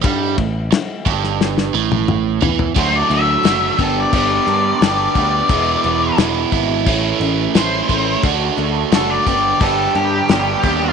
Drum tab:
CC |----------------|x-x-x-x-x-x-x-x-|x-x-x-x-x-x-x-x-|x-x-x-x-x-x-x-x-|
RD |x-x-x-x---------|----------------|----------------|----------------|
SD |----o--ooo------|----o-------o---|----o-------o---|----o-------o---|
T1 |-----------o----|----------------|----------------|----------------|
T2 |------------o---|----------------|----------------|----------------|
FT |--------------oo|----------------|----------------|----------------|
BD |o-o---o---------|o-----o-o-----o-|o-----o-o-----o-|o-----o-o-----o-|